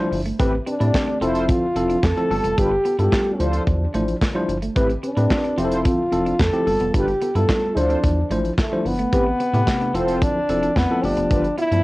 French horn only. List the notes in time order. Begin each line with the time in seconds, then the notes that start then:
Already playing: E4
0.68 D4
1.22 E4
1.50 F4
2.04 A4
2.59 G4
3.00 G4
3.34 C#4
3.41 D4
5.04 D4
5.59 E4
5.86 F4
6.41 A4
6.96 G4
7.36 A4
7.77 D4
8.59 A3
8.86 B3
9.95 C4
10.22 D4
10.76 B3
11.04 D4
11.58 E4